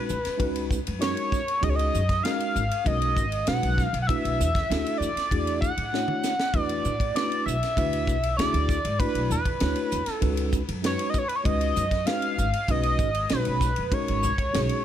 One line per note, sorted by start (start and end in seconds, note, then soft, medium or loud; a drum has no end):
0.00 0.16 G#3 medium
0.00 0.16 C#4 medium
0.00 0.16 D#4 medium
0.00 0.16 F#4 medium
0.00 0.17 B4 medium
0.00 0.65 B4 medium
0.09 0.22 C#2 medium
0.09 hi-hat pedal medium
0.25 muted upright bass stroke soft
0.25 snare soft
0.25 ride medium
0.37 0.77 C#2 medium
0.37 0.77 G#3 medium
0.37 0.77 C#4 medium
0.37 0.78 D#4 medium
0.37 0.78 F#4 medium
0.37 0.78 B4 medium
0.37 kick medium
0.37 ride medium
0.55 ride soft
0.71 kick medium
0.71 hi-hat pedal medium
0.87 1.12 F#2 medium
0.87 ride medium
0.99 1.39 G#3 medium
0.99 1.39 C#4 medium
0.99 1.39 D#4 medium
0.99 1.39 F#4 medium
0.99 1.40 A#4 medium
0.99 1.65 C#5 medium
0.99 snare loud
0.99 ride medium
1.17 ride medium
1.32 kick medium
1.32 snare soft
1.32 hi-hat pedal medium
1.48 ride soft
1.61 1.88 C#2 medium
1.61 2.00 G#3 medium
1.61 2.01 C#4 medium
1.61 2.01 D#4 medium
1.61 2.01 F#4 medium
1.61 2.02 G#4 medium
1.61 1.71 D#5 medium
1.61 kick medium
1.61 ride medium
1.69 1.77 C#5 medium
1.75 2.25 D#5 loud
1.75 ride medium
1.94 2.19 F#2 medium
1.94 hi-hat pedal medium
2.09 kick medium
2.09 snare soft
2.09 ride medium
2.23 2.62 G#3 medium
2.23 2.63 C#4 medium
2.23 2.63 D#4 medium
2.23 2.63 F#4 medium
2.23 2.63 A#4 medium
2.23 2.88 F5 medium
2.23 snare medium
2.23 ride medium
2.40 ride medium
2.56 2.68 G#1 medium
2.56 hi-hat pedal medium
2.71 ride medium
2.85 3.17 B1 loud
2.85 3.24 G#3 medium
2.85 3.24 C#4 medium
2.85 3.24 D#4 medium
2.85 3.24 F#4 medium
2.85 3.24 A#4 medium
2.85 3.48 D#5 loud
2.85 kick medium
2.85 ride medium
3.02 ride medium
3.17 3.41 G#1 medium
3.17 kick medium
3.17 hi-hat pedal medium
3.32 ride medium
3.47 3.60 B1 medium
3.47 3.85 G#3 medium
3.47 3.86 C#4 medium
3.47 3.86 D#4 medium
3.47 3.86 F#4 medium
3.47 3.86 B4 medium
3.47 3.84 F#5 medium
3.47 snare loud
3.47 ride medium
3.63 3.88 B1 medium
3.63 ride medium
3.78 kick medium
3.78 snare soft
3.78 hi-hat pedal medium
3.84 3.98 F5 medium
3.93 4.05 B1 medium
3.93 ride medium
4.02 4.08 F#5 medium
4.07 4.47 A3 medium
4.07 4.47 D4 medium
4.07 4.48 E4 medium
4.07 4.48 F#4 medium
4.07 4.48 B4 medium
4.07 4.99 E5 loud
4.07 muted upright bass stroke soft
4.07 kick loud
4.07 ride medium
4.25 4.42 B1 medium
4.25 ride medium
4.40 4.65 E2 medium
4.40 hi-hat pedal medium
4.55 kick medium
4.55 snare soft
4.55 ride medium
4.70 4.82 D2 medium
4.70 5.08 A3 medium
4.70 5.09 D4 medium
4.70 5.09 E4 medium
4.70 5.09 F#4 medium
4.70 5.09 A4 medium
4.70 snare medium
4.70 ride medium
4.86 ride medium
4.98 5.13 E2 medium
4.98 5.60 D5 loud
5.02 hi-hat pedal medium
5.16 muted upright bass stroke soft
5.16 snare soft
5.16 ride medium
5.31 5.69 E2 medium
5.31 5.70 A3 medium
5.31 5.70 D4 medium
5.31 5.70 E4 medium
5.31 5.70 F#4 medium
5.31 5.71 G#4 medium
5.31 kick medium
5.31 ride medium
5.47 ride medium
5.61 6.55 F#5 loud
5.61 kick medium
5.61 hi-hat pedal medium
5.77 6.02 A2 medium
5.77 ride soft
5.93 6.31 A3 medium
5.93 6.31 D4 medium
5.93 6.32 E4 medium
5.93 6.32 F#4 medium
5.93 6.32 C#5 medium
5.93 snare medium
6.08 mid tom medium
6.23 snare medium
6.23 hi-hat pedal medium
6.40 snare medium
6.53 6.79 E2 medium
6.53 6.92 A3 medium
6.53 6.93 D4 medium
6.53 6.93 E4 medium
6.53 6.93 F#4 medium
6.53 6.94 B4 medium
6.53 7.15 D5 loud
6.53 kick loud
6.53 ride medium
6.69 ride medium
6.84 7.10 A2 medium
6.84 hi-hat pedal medium
7.00 kick medium
7.00 ride medium
7.15 7.54 A3 medium
7.15 7.54 D4 medium
7.15 7.54 E4 medium
7.15 7.55 F#4 medium
7.15 7.55 B4 medium
7.15 7.44 D5 medium
7.15 snare medium
7.15 ride medium
7.32 ride soft
7.46 7.59 B1 medium
7.46 8.34 E5 loud
7.46 hi-hat pedal medium
7.63 snare soft
7.63 ride medium
7.76 8.08 D2 medium
7.76 8.15 A3 medium
7.76 8.15 D4 medium
7.76 8.16 E4 medium
7.76 8.16 F#4 medium
7.76 8.16 B4 medium
7.76 kick medium
7.76 ride medium
7.93 ride medium
8.07 8.33 B1 medium
8.07 kick medium
8.07 hi-hat pedal medium
8.23 ride medium
8.37 8.51 D2 medium
8.37 8.77 A3 medium
8.37 8.77 D4 medium
8.37 8.77 E4 medium
8.37 8.77 F#4 medium
8.37 8.78 G#4 medium
8.37 9.01 D5 medium
8.37 snare loud
8.37 ride medium
8.54 8.79 D2 medium
8.54 ride medium
8.69 kick medium
8.69 snare soft
8.69 hi-hat pedal medium
8.85 8.97 G#2 medium
8.85 ride medium
8.99 9.38 A3 medium
8.99 9.39 D4 medium
8.99 9.39 E4 medium
8.99 9.39 F#4 medium
8.99 9.30 B4 medium
8.99 9.39 D5 medium
8.99 muted upright bass stroke soft
8.99 kick medium
8.99 ride medium
9.15 9.32 B1 medium
9.15 ride medium
9.30 9.55 E2 medium
9.30 10.13 B4 medium
9.30 hi-hat pedal medium
9.45 kick medium
9.45 ride medium
9.60 9.74 D2 medium
9.60 10.00 A3 medium
9.60 10.00 D4 medium
9.60 10.00 E4 medium
9.60 10.00 F#4 medium
9.60 10.01 C#5 medium
9.60 snare loud
9.60 ride medium
9.75 ride medium
9.91 10.05 E2 medium
9.91 hi-hat pedal medium
10.06 muted upright bass stroke soft
10.06 snare soft
10.06 ride medium
10.13 10.50 A4 medium
10.21 10.60 C#2 medium
10.21 10.61 G#3 medium
10.21 10.61 C#4 medium
10.21 10.61 D#4 medium
10.21 10.61 F#4 medium
10.21 10.61 B4 medium
10.21 kick medium
10.21 ride medium
10.37 ride medium
10.52 kick medium
10.52 hi-hat pedal medium
10.68 10.94 F#2 medium
10.68 ride medium
10.82 11.22 G#3 medium
10.82 11.23 C#4 medium
10.82 11.23 D#4 medium
10.82 11.23 F#4 medium
10.82 11.23 B4 medium
10.82 11.11 C#5 medium
10.82 snare loud
10.82 ride medium
10.99 ride medium
11.10 11.20 D#5 medium
11.14 kick medium
11.14 hi-hat pedal medium
11.18 11.29 C#5 medium
11.28 11.37 B4 medium
11.28 ride medium
11.36 11.47 C#5 medium
11.44 11.71 C#2 medium
11.44 11.83 G#3 medium
11.44 11.84 C#4 medium
11.44 11.84 D#4 medium
11.44 11.84 F#4 medium
11.44 11.84 B4 medium
11.44 12.08 D#5 loud
11.44 kick loud
11.44 ride medium
11.61 ride medium
11.76 12.02 F#2 medium
11.76 hi-hat pedal medium
11.91 kick medium
11.91 snare soft
11.91 ride medium
12.05 12.45 G#3 medium
12.05 12.45 C#4 medium
12.05 12.46 D#4 medium
12.05 12.46 F#4 medium
12.05 12.46 B4 medium
12.05 12.72 F5 loud
12.05 snare loud
12.05 ride medium
12.22 ride medium
12.38 12.51 G#1 medium
12.38 hi-hat pedal medium
12.53 ride medium
12.68 12.99 B1 loud
12.68 13.08 G#3 medium
12.68 13.08 C#4 medium
12.68 13.08 D#4 medium
12.68 13.08 F#4 medium
12.68 13.09 B4 medium
12.68 13.34 D#5 loud
12.68 kick medium
12.68 ride medium
12.83 ride soft
12.99 13.24 G#1 medium
12.99 kick medium
12.99 hi-hat pedal medium
13.14 ride medium
13.29 13.44 B1 medium
13.29 13.69 G#3 medium
13.29 13.69 C#4 medium
13.29 13.70 D#4 medium
13.29 13.70 F#4 medium
13.29 13.95 B4 medium
13.29 13.70 C#5 medium
13.29 snare loud
13.29 ride medium
13.45 13.71 B1 medium
13.45 ride medium
13.61 kick medium
13.61 snare soft
13.61 hi-hat pedal medium
13.76 13.90 F2 medium
13.76 ride medium
13.91 14.30 G#3 medium
13.91 14.30 C#4 medium
13.91 14.30 D#4 medium
13.91 14.31 F#4 medium
13.91 14.31 A#4 medium
13.91 14.85 C#5 loud
13.91 muted upright bass stroke soft
13.91 kick loud
13.91 ride medium
14.08 14.26 G#1 medium
14.08 ride medium
14.22 14.49 C#2 medium
14.22 hi-hat pedal medium
14.38 kick medium
14.38 ride medium
14.53 14.67 B1 medium
14.53 14.85 G#3 medium
14.53 14.85 C#4 medium
14.53 14.85 D#4 medium
14.53 14.85 F#4 medium
14.53 14.85 G#4 medium
14.53 snare medium
14.53 ride medium
14.69 ride medium